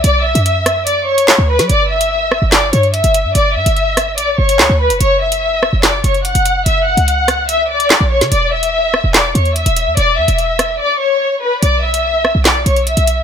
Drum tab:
HH |x--xx-x-x--x---x|x--x----x-xxxxx-|x--xx-x-x--x---x|x--x----x-xxxxx-|
CP |------------x---|--------x-------|------------x---|--------x-------|
SD |------r-----o--o|------r-o-------|------r-----o---|------r-o-------|

HH |x--xx-x-x--x---x|x--x----x-xxxxx-|x--xx-x---------|x--x----x-xxxxx-|
CP |------------x---|--------x-------|----------------|--------x-------|
SD |------r-----o--o|------r-o-------|------r---------|------r-o-------|